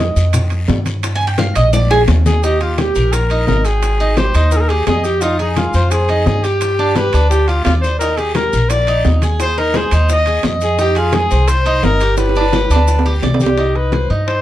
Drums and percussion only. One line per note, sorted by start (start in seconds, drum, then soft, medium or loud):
0.00 maracas soft
0.16 high bongo soft
0.16 high conga soft
0.16 short guiro medium
0.16 maracas medium
0.33 high bongo medium
0.33 high conga soft
0.33 low conga medium
0.33 high timbale medium
0.33 long guiro medium
0.33 maracas medium
0.50 high bongo soft
0.50 high conga soft
0.50 high timbale medium
0.50 maracas soft
0.68 high bongo soft
0.68 low bongo medium
0.68 high conga medium
0.68 low timbale medium
0.68 short guiro medium
0.68 maracas soft
0.86 high bongo soft
0.86 high conga medium
0.86 high timbale medium
0.86 short guiro medium
0.86 maracas medium
1.03 high bongo medium
1.03 high conga soft
1.03 high timbale loud
1.03 long guiro medium
1.03 maracas medium
1.20 high conga soft
1.20 maracas soft
1.38 high bongo medium
1.38 high conga medium
1.38 high timbale medium
1.38 low timbale medium
1.38 short guiro medium
1.38 maracas soft
1.55 high bongo soft
1.55 high conga soft
1.55 high timbale loud
1.55 short guiro medium
1.55 maracas medium
1.73 high bongo medium
1.73 high conga soft
1.73 long guiro medium
1.73 maracas medium
1.90 high bongo medium
1.90 high conga soft
1.90 high timbale medium
1.90 maracas soft
2.08 low bongo loud
2.08 high conga soft
2.08 high timbale loud
2.08 low timbale medium
2.08 short guiro medium
2.08 maracas soft
2.26 low bongo medium
2.26 high conga medium
2.26 short guiro medium
2.26 maracas medium
2.43 high bongo medium
2.43 high conga soft
2.43 long guiro medium
2.43 maracas medium
2.60 high conga soft
2.60 high timbale medium
2.60 maracas soft
2.78 high bongo medium
2.78 high conga medium
2.78 high timbale medium
2.78 low timbale medium
2.78 short guiro medium
2.78 maracas soft
2.95 high bongo soft
2.95 high conga soft
2.95 short guiro medium
2.95 maracas medium
3.13 high bongo medium
3.13 high conga soft
3.13 high timbale medium
3.13 long guiro medium
3.13 maracas medium
3.30 high bongo soft
3.30 high conga soft
3.30 high timbale medium
3.30 maracas soft
3.47 high bongo soft
3.47 low bongo medium
3.47 high conga medium
3.47 low timbale medium
3.47 short guiro medium
3.47 maracas soft
3.65 high bongo soft
3.65 high timbale medium
3.65 short guiro medium
3.65 maracas medium
3.82 high bongo medium
3.82 high conga soft
3.82 high timbale medium
3.82 long guiro medium
3.82 maracas medium
4.00 high conga soft
4.00 maracas soft
4.17 high bongo medium
4.17 high conga medium
4.17 high timbale medium
4.17 low timbale medium
4.17 short guiro medium
4.17 maracas soft
4.34 high bongo soft
4.34 high conga soft
4.34 high timbale medium
4.34 short guiro medium
4.34 maracas medium
4.51 high bongo medium
4.51 high conga soft
4.51 long guiro medium
4.51 maracas medium
4.69 high bongo soft
4.69 high conga soft
4.69 high timbale medium
4.69 maracas soft
4.87 high bongo soft
4.87 low bongo medium
4.87 high conga soft
4.87 high timbale medium
4.87 low timbale medium
4.87 short guiro medium
4.87 maracas soft
5.04 high bongo soft
5.04 short guiro medium
5.04 maracas medium
5.21 high bongo medium
5.21 high conga soft
5.21 long guiro medium
5.21 maracas medium
5.39 high conga soft
5.39 high timbale medium
5.39 maracas soft
5.56 high bongo medium
5.56 high conga medium
5.56 high timbale medium
5.56 low timbale medium
5.56 short guiro medium
5.56 maracas soft
5.73 high bongo soft
5.73 high conga soft
5.73 short guiro medium
5.73 maracas medium
5.91 high bongo medium
5.91 high conga soft
5.91 high timbale medium
5.91 long guiro medium
5.91 maracas medium
6.09 high bongo soft
6.09 high conga soft
6.09 high timbale medium
6.09 maracas soft
6.26 high bongo soft
6.26 low bongo medium
6.26 high conga medium
6.26 low timbale medium
6.26 short guiro medium
6.26 maracas soft
6.44 high bongo soft
6.44 high timbale medium
6.44 short guiro medium
6.44 maracas medium
6.61 high bongo medium
6.61 high conga soft
6.61 high timbale medium
6.61 long guiro medium
6.61 maracas medium
6.78 high conga soft
6.78 maracas soft
6.96 high bongo medium
6.96 high conga medium
6.96 high timbale medium
6.96 low timbale medium
6.96 short guiro medium
6.96 maracas soft
7.13 high bongo soft
7.13 high conga soft
7.13 high timbale medium
7.13 short guiro medium
7.13 maracas medium
7.30 high bongo medium
7.30 high conga soft
7.30 long guiro medium
7.30 maracas medium
7.48 high bongo soft
7.48 high conga soft
7.48 high timbale medium
7.48 maracas soft
7.65 high bongo soft
7.65 low bongo medium
7.65 high conga soft
7.65 high timbale medium
7.65 low timbale medium
7.65 short guiro medium
7.65 maracas soft
7.84 high bongo soft
7.84 short guiro medium
7.84 maracas medium
8.00 high bongo medium
8.00 high conga soft
8.00 long guiro medium
8.00 maracas medium
8.17 high conga soft
8.17 high timbale medium
8.17 maracas soft
8.35 high bongo medium
8.35 high conga medium
8.35 high timbale medium
8.35 low timbale medium
8.35 short guiro medium
8.35 maracas soft
8.52 high bongo soft
8.52 high conga soft
8.52 short guiro medium
8.52 maracas medium
8.70 high bongo medium
8.70 high conga soft
8.70 high timbale medium
8.70 long guiro medium
8.70 maracas medium
8.87 high bongo soft
8.87 high conga soft
8.87 high timbale medium
8.87 maracas soft
9.05 high bongo soft
9.05 low bongo medium
9.05 high conga medium
9.05 low timbale medium
9.05 short guiro medium
9.05 maracas soft
9.22 high bongo soft
9.22 high conga medium
9.22 high timbale medium
9.22 short guiro medium
9.22 maracas medium
9.40 high bongo medium
9.40 high conga soft
9.40 high timbale medium
9.40 long guiro medium
9.40 maracas medium
9.57 high conga soft
9.57 maracas soft
9.74 high bongo medium
9.74 high conga medium
9.74 high timbale medium
9.74 low timbale medium
9.74 short guiro medium
9.74 maracas soft
9.91 high bongo soft
9.91 high conga soft
9.91 high timbale medium
9.91 short guiro medium
9.91 maracas medium
10.09 high bongo medium
10.09 high conga soft
10.09 long guiro medium
10.09 maracas medium
10.26 high bongo soft
10.26 high conga soft
10.26 high timbale medium
10.26 maracas soft
10.43 high bongo soft
10.43 low bongo medium
10.43 high conga soft
10.43 high timbale medium
10.43 low timbale medium
10.43 short guiro medium
10.43 maracas soft
10.61 high bongo soft
10.61 short guiro medium
10.61 maracas medium
10.78 high bongo medium
10.78 high conga soft
10.78 long guiro medium
10.78 maracas medium
10.95 high conga soft
10.95 high timbale medium
10.95 maracas soft
11.12 high bongo medium
11.12 high conga medium
11.12 high timbale medium
11.12 low timbale medium
11.12 short guiro medium
11.12 maracas soft
11.31 high bongo soft
11.31 high conga soft
11.31 short guiro medium
11.31 maracas medium
11.48 high bongo medium
11.48 high conga soft
11.48 high timbale loud
11.48 long guiro medium
11.48 maracas medium
11.66 high bongo soft
11.66 high conga soft
11.66 high timbale medium
11.66 maracas soft
11.83 high bongo soft
11.83 low bongo medium
11.83 high conga medium
11.83 low timbale medium
11.83 short guiro medium
11.83 maracas soft
12.00 high bongo soft
12.00 high timbale medium
12.00 short guiro medium
12.00 maracas medium
12.17 high bongo medium
12.17 high conga soft
12.17 high timbale medium
12.17 long guiro medium
12.17 maracas medium
12.29 high timbale medium
12.35 high conga soft
12.35 maracas soft
12.41 high timbale medium
12.52 high bongo medium
12.52 high conga medium
12.52 high timbale medium
12.52 short guiro medium
12.52 maracas soft
12.65 high timbale medium
12.71 high conga soft
12.71 short guiro medium
12.71 maracas medium
12.76 low timbale medium
12.88 high bongo medium
12.88 high conga soft
12.88 long guiro medium
12.88 maracas medium
12.99 low timbale medium
13.05 high bongo soft
13.05 high conga soft
13.05 maracas soft
13.22 high bongo soft
13.22 low bongo medium
13.22 high conga soft
13.22 low timbale medium
13.22 short guiro medium
13.22 maracas soft
13.34 low timbale loud
13.40 high bongo soft
13.40 high conga medium
13.40 short guiro medium
13.40 maracas medium
13.46 low timbale medium
13.58 high bongo medium
13.75 high conga soft
13.75 high timbale medium
13.92 high bongo medium
13.92 high conga medium
13.92 high timbale medium
13.92 low timbale medium
14.10 high conga soft
14.27 high bongo medium
14.27 high conga soft
14.27 high timbale medium